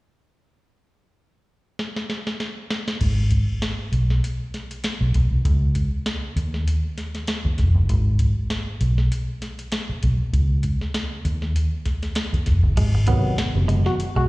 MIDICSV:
0, 0, Header, 1, 8, 480
1, 0, Start_track
1, 0, Tempo, 609756
1, 449, Time_signature, 4, 2, 24, 8
1, 11245, End_track
2, 0, Start_track
2, 0, Title_t, "Trombone"
2, 0, Program_c, 0, 57
2, 10910, Note_on_c, 0, 66, 85
2, 10977, Note_off_c, 0, 66, 0
2, 11151, Note_on_c, 0, 66, 99
2, 11217, Note_off_c, 0, 66, 0
2, 11245, End_track
3, 0, Start_track
3, 0, Title_t, "Clean electric guitar"
3, 0, Program_c, 1, 27
3, 10055, Note_on_c, 1, 56, 76
3, 10150, Note_off_c, 1, 56, 0
3, 10294, Note_on_c, 1, 59, 65
3, 10389, Note_off_c, 1, 59, 0
3, 10771, Note_on_c, 1, 56, 78
3, 10867, Note_off_c, 1, 56, 0
3, 10912, Note_on_c, 1, 54, 75
3, 10985, Note_off_c, 1, 54, 0
3, 11150, Note_on_c, 1, 56, 74
3, 11223, Note_off_c, 1, 56, 0
3, 11245, End_track
4, 0, Start_track
4, 0, Title_t, "Tine electric piano"
4, 0, Program_c, 2, 4
4, 10288, Note_on_c, 2, 48, 100
4, 10292, Note_on_c, 2, 51, 97
4, 10294, Note_on_c, 2, 54, 99
4, 10299, Note_on_c, 2, 59, 114
4, 10507, Note_off_c, 2, 48, 0
4, 10509, Note_off_c, 2, 51, 0
4, 10511, Note_off_c, 2, 54, 0
4, 10513, Note_off_c, 2, 59, 0
4, 10664, Note_on_c, 2, 48, 85
4, 10666, Note_on_c, 2, 51, 75
4, 10670, Note_on_c, 2, 54, 65
4, 10674, Note_on_c, 2, 59, 82
4, 10876, Note_off_c, 2, 48, 0
4, 10877, Note_off_c, 2, 51, 0
4, 10879, Note_off_c, 2, 54, 0
4, 10881, Note_off_c, 2, 59, 0
4, 11010, Note_on_c, 2, 54, 33
4, 11022, Note_on_c, 2, 56, 32
4, 11076, Note_off_c, 2, 54, 0
4, 11082, Note_off_c, 2, 56, 0
4, 11245, End_track
5, 0, Start_track
5, 0, Title_t, "Fingered electric bass"
5, 0, Program_c, 3, 33
5, 2369, Note_on_c, 3, 32, 99
5, 2705, Note_off_c, 3, 32, 0
5, 3086, Note_on_c, 3, 35, 79
5, 3304, Note_off_c, 3, 35, 0
5, 3941, Note_on_c, 3, 35, 88
5, 4038, Note_off_c, 3, 35, 0
5, 4056, Note_on_c, 3, 35, 77
5, 4175, Note_off_c, 3, 35, 0
5, 4181, Note_on_c, 3, 36, 75
5, 4278, Note_off_c, 3, 36, 0
5, 4290, Note_on_c, 3, 37, 98
5, 4626, Note_off_c, 3, 37, 0
5, 5008, Note_on_c, 3, 39, 89
5, 5225, Note_off_c, 3, 39, 0
5, 5863, Note_on_c, 3, 39, 84
5, 5960, Note_off_c, 3, 39, 0
5, 5976, Note_on_c, 3, 29, 84
5, 6095, Note_off_c, 3, 29, 0
5, 6101, Note_on_c, 3, 30, 89
5, 6211, Note_off_c, 3, 30, 0
5, 6211, Note_on_c, 3, 32, 95
5, 6547, Note_off_c, 3, 32, 0
5, 6933, Note_on_c, 3, 35, 89
5, 7148, Note_off_c, 3, 35, 0
5, 7900, Note_on_c, 3, 35, 76
5, 8018, Note_off_c, 3, 35, 0
5, 8133, Note_on_c, 3, 37, 99
5, 8469, Note_off_c, 3, 37, 0
5, 8855, Note_on_c, 3, 39, 92
5, 9070, Note_off_c, 3, 39, 0
5, 9707, Note_on_c, 3, 39, 82
5, 9802, Note_off_c, 3, 39, 0
5, 9819, Note_on_c, 3, 29, 79
5, 9937, Note_off_c, 3, 29, 0
5, 9942, Note_on_c, 3, 30, 78
5, 10040, Note_off_c, 3, 30, 0
5, 10052, Note_on_c, 3, 32, 90
5, 10388, Note_off_c, 3, 32, 0
5, 10668, Note_on_c, 3, 30, 75
5, 10882, Note_off_c, 3, 30, 0
5, 11146, Note_on_c, 3, 35, 83
5, 11241, Note_off_c, 3, 35, 0
5, 11245, End_track
6, 0, Start_track
6, 0, Title_t, "Muted clean electric guitar strokes"
6, 10192, Note_on_c, 9, 29, 37
6, 10271, Note_off_c, 9, 29, 0
6, 10535, Note_on_c, 9, 29, 48
6, 10613, Note_off_c, 9, 29, 0
6, 11245, End_track
7, 0, Start_track
7, 0, Title_t, "Muted fingered electric bass strokes"
7, 7789, Note_on_c, 9, 29, 43
7, 7867, Note_off_c, 9, 29, 0
7, 10536, Note_on_c, 9, 29, 49
7, 10615, Note_off_c, 9, 29, 0
7, 11245, End_track
8, 0, Start_track
8, 0, Title_t, "Drums"
8, 1411, Note_on_c, 9, 38, 55
8, 1489, Note_off_c, 9, 38, 0
8, 1546, Note_on_c, 9, 38, 49
8, 1625, Note_off_c, 9, 38, 0
8, 1650, Note_on_c, 9, 38, 60
8, 1729, Note_off_c, 9, 38, 0
8, 1786, Note_on_c, 9, 38, 58
8, 1864, Note_off_c, 9, 38, 0
8, 1890, Note_on_c, 9, 38, 69
8, 1969, Note_off_c, 9, 38, 0
8, 2129, Note_on_c, 9, 38, 88
8, 2208, Note_off_c, 9, 38, 0
8, 2265, Note_on_c, 9, 38, 78
8, 2343, Note_off_c, 9, 38, 0
8, 2367, Note_on_c, 9, 49, 85
8, 2369, Note_on_c, 9, 36, 99
8, 2446, Note_off_c, 9, 49, 0
8, 2447, Note_off_c, 9, 36, 0
8, 2603, Note_on_c, 9, 42, 86
8, 2612, Note_on_c, 9, 36, 88
8, 2682, Note_off_c, 9, 42, 0
8, 2690, Note_off_c, 9, 36, 0
8, 2850, Note_on_c, 9, 38, 99
8, 2851, Note_on_c, 9, 42, 69
8, 2929, Note_off_c, 9, 38, 0
8, 2930, Note_off_c, 9, 42, 0
8, 3091, Note_on_c, 9, 42, 64
8, 3170, Note_off_c, 9, 42, 0
8, 3230, Note_on_c, 9, 38, 34
8, 3309, Note_off_c, 9, 38, 0
8, 3338, Note_on_c, 9, 42, 91
8, 3417, Note_off_c, 9, 42, 0
8, 3574, Note_on_c, 9, 42, 56
8, 3575, Note_on_c, 9, 38, 29
8, 3653, Note_off_c, 9, 42, 0
8, 3654, Note_off_c, 9, 38, 0
8, 3707, Note_on_c, 9, 42, 49
8, 3786, Note_off_c, 9, 42, 0
8, 3808, Note_on_c, 9, 42, 93
8, 3812, Note_on_c, 9, 38, 98
8, 3886, Note_off_c, 9, 42, 0
8, 3891, Note_off_c, 9, 38, 0
8, 4049, Note_on_c, 9, 42, 70
8, 4057, Note_on_c, 9, 36, 84
8, 4128, Note_off_c, 9, 42, 0
8, 4136, Note_off_c, 9, 36, 0
8, 4291, Note_on_c, 9, 36, 101
8, 4292, Note_on_c, 9, 42, 106
8, 4369, Note_off_c, 9, 36, 0
8, 4371, Note_off_c, 9, 42, 0
8, 4527, Note_on_c, 9, 42, 86
8, 4534, Note_on_c, 9, 36, 90
8, 4606, Note_off_c, 9, 42, 0
8, 4612, Note_off_c, 9, 36, 0
8, 4770, Note_on_c, 9, 38, 97
8, 4772, Note_on_c, 9, 42, 83
8, 4849, Note_off_c, 9, 38, 0
8, 4850, Note_off_c, 9, 42, 0
8, 5012, Note_on_c, 9, 42, 72
8, 5091, Note_off_c, 9, 42, 0
8, 5149, Note_on_c, 9, 38, 35
8, 5227, Note_off_c, 9, 38, 0
8, 5255, Note_on_c, 9, 42, 86
8, 5334, Note_off_c, 9, 42, 0
8, 5491, Note_on_c, 9, 42, 54
8, 5492, Note_on_c, 9, 38, 29
8, 5570, Note_off_c, 9, 42, 0
8, 5571, Note_off_c, 9, 38, 0
8, 5626, Note_on_c, 9, 42, 46
8, 5627, Note_on_c, 9, 38, 29
8, 5704, Note_off_c, 9, 42, 0
8, 5706, Note_off_c, 9, 38, 0
8, 5727, Note_on_c, 9, 42, 88
8, 5731, Note_on_c, 9, 38, 97
8, 5805, Note_off_c, 9, 42, 0
8, 5810, Note_off_c, 9, 38, 0
8, 5866, Note_on_c, 9, 36, 94
8, 5944, Note_off_c, 9, 36, 0
8, 5967, Note_on_c, 9, 42, 69
8, 5969, Note_on_c, 9, 38, 33
8, 5977, Note_on_c, 9, 36, 82
8, 6046, Note_off_c, 9, 42, 0
8, 6048, Note_off_c, 9, 38, 0
8, 6056, Note_off_c, 9, 36, 0
8, 6100, Note_on_c, 9, 36, 85
8, 6179, Note_off_c, 9, 36, 0
8, 6212, Note_on_c, 9, 36, 94
8, 6213, Note_on_c, 9, 42, 105
8, 6291, Note_off_c, 9, 36, 0
8, 6292, Note_off_c, 9, 42, 0
8, 6448, Note_on_c, 9, 42, 90
8, 6456, Note_on_c, 9, 36, 96
8, 6527, Note_off_c, 9, 42, 0
8, 6534, Note_off_c, 9, 36, 0
8, 6692, Note_on_c, 9, 38, 86
8, 6694, Note_on_c, 9, 42, 83
8, 6771, Note_off_c, 9, 38, 0
8, 6773, Note_off_c, 9, 42, 0
8, 6933, Note_on_c, 9, 42, 77
8, 7012, Note_off_c, 9, 42, 0
8, 7069, Note_on_c, 9, 38, 32
8, 7147, Note_off_c, 9, 38, 0
8, 7178, Note_on_c, 9, 42, 88
8, 7256, Note_off_c, 9, 42, 0
8, 7414, Note_on_c, 9, 42, 62
8, 7415, Note_on_c, 9, 38, 27
8, 7493, Note_off_c, 9, 42, 0
8, 7494, Note_off_c, 9, 38, 0
8, 7548, Note_on_c, 9, 42, 44
8, 7626, Note_off_c, 9, 42, 0
8, 7649, Note_on_c, 9, 42, 86
8, 7654, Note_on_c, 9, 38, 97
8, 7728, Note_off_c, 9, 42, 0
8, 7733, Note_off_c, 9, 38, 0
8, 7893, Note_on_c, 9, 42, 71
8, 7900, Note_on_c, 9, 36, 81
8, 7971, Note_off_c, 9, 42, 0
8, 7979, Note_off_c, 9, 36, 0
8, 8135, Note_on_c, 9, 36, 95
8, 8136, Note_on_c, 9, 42, 102
8, 8213, Note_off_c, 9, 36, 0
8, 8215, Note_off_c, 9, 42, 0
8, 8368, Note_on_c, 9, 42, 81
8, 8377, Note_on_c, 9, 36, 91
8, 8447, Note_off_c, 9, 42, 0
8, 8456, Note_off_c, 9, 36, 0
8, 8512, Note_on_c, 9, 38, 31
8, 8591, Note_off_c, 9, 38, 0
8, 8615, Note_on_c, 9, 38, 92
8, 8616, Note_on_c, 9, 42, 81
8, 8694, Note_off_c, 9, 38, 0
8, 8695, Note_off_c, 9, 42, 0
8, 8856, Note_on_c, 9, 42, 66
8, 8935, Note_off_c, 9, 42, 0
8, 8990, Note_on_c, 9, 38, 34
8, 9068, Note_off_c, 9, 38, 0
8, 9099, Note_on_c, 9, 42, 85
8, 9178, Note_off_c, 9, 42, 0
8, 9332, Note_on_c, 9, 42, 56
8, 9333, Note_on_c, 9, 38, 26
8, 9334, Note_on_c, 9, 36, 74
8, 9411, Note_off_c, 9, 42, 0
8, 9412, Note_off_c, 9, 38, 0
8, 9413, Note_off_c, 9, 36, 0
8, 9467, Note_on_c, 9, 42, 42
8, 9468, Note_on_c, 9, 38, 30
8, 9546, Note_off_c, 9, 42, 0
8, 9547, Note_off_c, 9, 38, 0
8, 9567, Note_on_c, 9, 42, 98
8, 9572, Note_on_c, 9, 38, 104
8, 9646, Note_off_c, 9, 42, 0
8, 9651, Note_off_c, 9, 38, 0
8, 9709, Note_on_c, 9, 36, 93
8, 9713, Note_on_c, 9, 42, 50
8, 9788, Note_off_c, 9, 36, 0
8, 9792, Note_off_c, 9, 42, 0
8, 9809, Note_on_c, 9, 42, 79
8, 9812, Note_on_c, 9, 38, 32
8, 9820, Note_on_c, 9, 36, 88
8, 9888, Note_off_c, 9, 42, 0
8, 9891, Note_off_c, 9, 38, 0
8, 9899, Note_off_c, 9, 36, 0
8, 9944, Note_on_c, 9, 36, 91
8, 10022, Note_off_c, 9, 36, 0
8, 10053, Note_on_c, 9, 49, 94
8, 10054, Note_on_c, 9, 36, 115
8, 10054, Note_on_c, 9, 42, 116
8, 10131, Note_off_c, 9, 49, 0
8, 10132, Note_off_c, 9, 42, 0
8, 10133, Note_off_c, 9, 36, 0
8, 10286, Note_on_c, 9, 42, 92
8, 10297, Note_on_c, 9, 36, 102
8, 10365, Note_off_c, 9, 42, 0
8, 10376, Note_off_c, 9, 36, 0
8, 10534, Note_on_c, 9, 38, 97
8, 10535, Note_on_c, 9, 42, 94
8, 10613, Note_off_c, 9, 38, 0
8, 10614, Note_off_c, 9, 42, 0
8, 10776, Note_on_c, 9, 42, 75
8, 10855, Note_off_c, 9, 42, 0
8, 10910, Note_on_c, 9, 38, 39
8, 10989, Note_off_c, 9, 38, 0
8, 11019, Note_on_c, 9, 42, 85
8, 11098, Note_off_c, 9, 42, 0
8, 11245, End_track
0, 0, End_of_file